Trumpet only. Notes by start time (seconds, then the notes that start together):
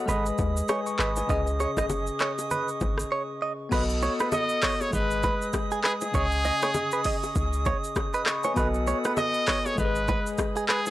4.33 D#5
4.81 C#5
4.94 B4
5.85 G#4
6.02 G#4
9.18 D#5
9.66 C#5
9.79 B4
10.69 G#4
10.87 G#4